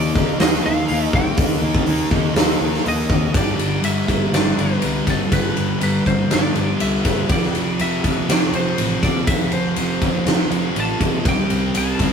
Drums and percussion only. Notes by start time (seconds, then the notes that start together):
0.15 kick
0.40 snare, open hi-hat
0.88 open hi-hat
1.13 kick
1.37 kick, open hi-hat
1.75 kick
1.87 open hi-hat
2.11 kick
2.36 snare, open hi-hat
2.74 snare
2.86 open hi-hat
3.10 kick
3.34 kick, ride
3.59 ride
3.84 ride
4.08 kick, ride
4.34 snare, ride
4.59 ride
4.82 ride
5.07 kick, ride
5.32 kick, ride
5.57 ride
5.81 ride
6.06 kick, ride
6.31 snare, ride
6.55 ride
6.80 ride
7.05 kick, ride
7.29 kick, ride
7.43 snare
7.55 ride
7.79 ride
8.04 kick, ride
8.29 snare, ride
8.53 ride
8.78 ride
9.03 kick, ride
9.27 kick, ride
9.52 ride
9.76 ride
10.02 kick, ride
10.26 snare, ride
10.51 ride
10.76 ride
11.01 kick, ride
11.25 kick, ride
11.50 ride
11.75 ride
11.99 kick, ride